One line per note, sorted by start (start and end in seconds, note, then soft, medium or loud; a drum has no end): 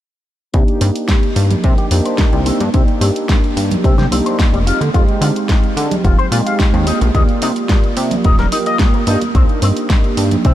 0.53 0.64 C2 medium
0.53 1.88 A#3 medium
0.53 0.61 C4 medium
0.53 1.88 D4 medium
0.53 1.89 D#4 medium
0.53 1.89 G4 medium
0.53 kick loud
0.53 closed hi-hat soft
0.68 closed hi-hat soft
0.81 0.91 G2 loud
0.81 0.86 C4 medium
0.81 open hi-hat loud
0.96 closed hi-hat medium
1.08 kick loud
1.08 snare loud
1.08 closed hi-hat soft
1.23 closed hi-hat soft
1.36 1.55 G2 medium
1.36 open hi-hat medium
1.51 closed hi-hat soft
1.51 low conga medium
1.64 1.74 C3 loud
1.64 1.75 C4 medium
1.64 kick loud
1.64 closed hi-hat soft
1.78 1.85 G4 medium
1.78 closed hi-hat soft
1.91 2.01 F2 medium
1.91 2.43 A#3 medium
1.91 1.96 C4 medium
1.91 2.43 D4 medium
1.91 2.44 D#4 medium
1.91 2.44 G4 loud
1.91 open hi-hat loud
2.05 2.16 C5 medium
2.05 closed hi-hat soft
2.18 kick loud
2.18 snare loud
2.18 closed hi-hat soft
2.33 2.51 C2 medium
2.33 2.38 G3 medium
2.33 closed hi-hat soft
2.46 2.61 A#3 medium
2.46 2.57 C4 medium
2.46 2.61 D4 medium
2.46 2.61 D#4 medium
2.46 2.61 G4 medium
2.46 open hi-hat medium
2.60 2.70 G2 loud
2.60 closed hi-hat soft
2.60 high conga medium
2.73 2.84 C2 loud
2.73 4.08 A#3 medium
2.73 2.81 C4 medium
2.73 4.08 D4 medium
2.73 4.09 D#4 medium
2.73 4.09 G4 medium
2.73 kick loud
2.73 closed hi-hat soft
2.88 closed hi-hat soft
3.01 3.11 G2 loud
3.01 3.06 C4 medium
3.01 open hi-hat loud
3.16 closed hi-hat soft
3.29 kick loud
3.29 snare loud
3.29 closed hi-hat soft
3.44 closed hi-hat soft
3.57 3.76 G2 medium
3.57 open hi-hat medium
3.71 closed hi-hat soft
3.71 low conga medium
3.84 3.94 C3 medium
3.84 3.95 C4 medium
3.84 kick loud
3.84 closed hi-hat soft
3.98 4.07 C3 medium
3.98 4.05 G4 medium
3.98 snare soft
3.98 closed hi-hat soft
3.98 low conga medium
4.11 4.21 C2 medium
4.11 4.63 A#3 medium
4.11 4.16 C4 medium
4.11 4.63 D4 medium
4.11 4.64 D#4 medium
4.11 4.64 G4 loud
4.11 open hi-hat loud
4.26 4.36 C5 medium
4.26 closed hi-hat soft
4.39 kick loud
4.39 snare loud
4.39 closed hi-hat soft
4.53 4.72 F1 medium
4.53 4.58 G3 medium
4.53 closed hi-hat soft
4.66 4.81 G#3 medium
4.66 4.81 C4 medium
4.66 4.81 D#4 medium
4.66 4.78 F4 medium
4.66 4.82 G4 loud
4.66 open hi-hat medium
4.81 4.90 D3 medium
4.81 closed hi-hat soft
4.81 high conga medium
4.93 5.04 F2 loud
4.93 6.28 G#3 medium
4.93 6.29 C4 medium
4.93 6.29 D#4 medium
4.93 5.02 F4 medium
4.93 6.29 G4 medium
4.93 kick loud
4.93 closed hi-hat soft
5.09 closed hi-hat soft
5.21 5.31 D3 loud
5.21 5.26 F4 medium
5.21 open hi-hat loud
5.36 closed hi-hat soft
5.49 kick loud
5.49 snare loud
5.49 closed hi-hat soft
5.64 closed hi-hat soft
5.77 5.96 D3 medium
5.77 open hi-hat medium
5.91 closed hi-hat soft
5.91 low conga medium
6.04 6.14 F1 loud
6.04 6.15 F4 medium
6.04 kick loud
6.04 closed hi-hat soft
6.19 6.25 C5 medium
6.19 closed hi-hat soft
6.31 6.42 A#2 medium
6.31 6.84 G#3 medium
6.31 6.84 C4 medium
6.31 6.84 D#4 medium
6.31 6.36 F4 medium
6.31 6.84 G4 loud
6.31 open hi-hat loud
6.46 6.56 F5 medium
6.46 closed hi-hat soft
6.60 kick loud
6.60 snare loud
6.60 closed hi-hat soft
6.73 6.92 D#2 loud
6.73 6.78 C4 medium
6.73 closed hi-hat soft
6.87 7.02 A#3 medium
6.87 7.02 D4 medium
6.87 6.98 D#4 medium
6.87 7.02 G4 medium
6.87 open hi-hat medium
7.01 7.10 A#1 loud
7.01 closed hi-hat soft
7.01 high conga medium
7.13 7.24 D#2 loud
7.13 8.49 A#3 medium
7.13 7.22 D#4 medium
7.13 8.49 F4 medium
7.13 8.50 G4 medium
7.13 8.49 D5 medium
7.13 kick loud
7.13 closed hi-hat soft
7.29 closed hi-hat soft
7.42 7.52 C3 loud
7.42 7.47 D#4 medium
7.42 open hi-hat loud
7.56 closed hi-hat soft
7.69 kick loud
7.69 snare loud
7.69 closed hi-hat soft
7.84 closed hi-hat soft
7.97 8.16 C3 medium
7.97 open hi-hat medium
8.11 closed hi-hat soft
8.11 low conga medium
8.24 8.34 D#1 medium
8.24 8.35 D#4 medium
8.24 kick loud
8.24 closed hi-hat soft
8.39 8.48 D#1 medium
8.39 8.46 A#4 medium
8.39 snare soft
8.39 closed hi-hat soft
8.39 low conga medium
8.52 9.04 A#3 medium
8.52 8.57 D#4 medium
8.52 9.04 F4 medium
8.52 9.04 G4 loud
8.52 open hi-hat loud
8.66 8.77 D#5 medium
8.66 closed hi-hat soft
8.79 kick loud
8.79 snare loud
8.79 closed hi-hat soft
8.94 8.98 A#3 medium
8.94 closed hi-hat soft
9.07 9.17 G2 loud
9.07 9.22 A#3 medium
9.07 9.22 D4 medium
9.07 9.18 D#4 medium
9.07 9.22 F4 medium
9.07 9.22 G4 loud
9.07 open hi-hat medium
9.21 closed hi-hat soft
9.21 high conga medium
9.34 9.45 C2 loud
9.34 10.54 A#3 medium
9.34 9.42 C4 medium
9.34 10.54 D4 medium
9.34 10.54 D#4 medium
9.34 10.54 G4 medium
9.34 kick loud
9.34 closed hi-hat soft
9.49 closed hi-hat soft
9.62 9.72 G2 loud
9.62 9.67 C4 medium
9.62 open hi-hat medium
9.77 closed hi-hat soft
9.90 kick loud
9.90 snare loud
9.90 closed hi-hat soft
10.04 closed hi-hat soft
10.17 10.36 G2 medium
10.17 open hi-hat medium
10.31 closed hi-hat soft
10.31 low conga medium
10.45 10.54 C3 loud
10.45 10.54 C4 medium
10.45 kick loud
10.45 closed hi-hat soft